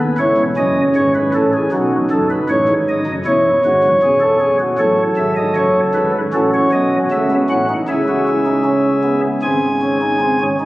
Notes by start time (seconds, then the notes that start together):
0.00 B4
0.18 C#1 C#2 E4 C#5
0.37 E1 E2
0.57 F#1 F#2 C#4 D#5
0.95 G#1 G#2 C#5
1.15 B4
1.34 A1 A2 A4
1.53 G#4
1.72 B1 B2 D#4 F#4
2.10 F#1 F#2 A4
2.30 B4
2.49 A1 A2 C#5
2.68 G#1 G#2
2.88 D#5
3.06 F#1 F#2
3.25 E1 E2 E4 C#5
3.65 G#1 G#2 F#4
3.84 F#1 F#2
4.02 E1 E2 G#4
4.20 A4
4.40 G#4
4.60 F#4
4.78 A1 A2 F#3 A4 C#5
5.16 G#1 G#2 E5
5.36 D#5
5.56 F#1 F#2 C#5
5.94 G#1 G#2 B4
6.33 A1 A2 C#4 F#4 A4
6.54 C#5
6.72 B1 B2 D#5
7.11 C#2 C#3 A3 E5
7.31 B3
7.50 A1 A2 C#4 F#5
7.69 D#4
7.88 C#2 C#3 E4 G#4 E5
8.08 F#4
8.28 E4
8.46 D#4
8.65 C#4
9.03 B3
9.42 G#1 G#2 C4 G#4 G#5
9.82 C#4
10.01 D#4
10.21 C4
10.40 C#4
10.60 D#4